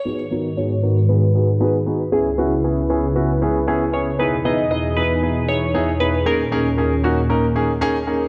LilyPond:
<<
  \new Staff \with { instrumentName = "Synth pluck" } { \time 4/4 \key gis \minor \tempo 4 = 116 b'8 dis''8 cis''4 b'4 b'4 | gis'2.~ gis'8 cis''8 | b'8 dis''8 dis''8 b'4 cis''4 b'8 | ais'2.~ ais'8 r8 | }
  \new Staff \with { instrumentName = "Grand piano" } { \time 4/4 \key gis \minor <b dis' fis' gis'>8 <b dis' fis' ais'>8 <b dis' fis' gis'>8 <b dis' fis' ais'>8 <b dis' fis' gis'>8 <b dis' fis' gis'>8 <b dis' fis' gis'>8 <b dis' fis' gis'>8 | <b cis' e' gis'>8 <b cis' e' fis'>8 <b cis' e' gis'>8 <b cis' e' gis'>8 <b cis' e' fis'>8 <b cis' e' gis'>8 <b cis' e' gis'>8 <b cis' e' gis'>8 | <b dis' e' gis'>8 <b dis' e' gis'>8 <b dis' e' gis'>8 <b dis' e' gis'>8 <b dis' e' gis'>8 <b dis' e' gis'>8 <b dis' e' gis'>8 <b dis' e' gis'>8 | <ais cis' dis' gis'>8 <ais cis' dis' gis'>8 <ais cis' dis' gis'>8 <ais cis' dis' fis'>8 <ais cis' dis' ais'>8 <ais cis' dis' gis'>8 <ais cis' dis' gis'>8 <ais cis' dis' gis'>8 | }
  \new Staff \with { instrumentName = "Analog synth pad" } { \clef bass \time 4/4 \key gis \minor << { b'1 | b'1 | gis'1~ | gis'1 | } \\ { <gis, dis fis'>1 | <cis, cis e'>1 | <e, b, dis'>1 | <dis, ais, cis'>1 | } >> }
>>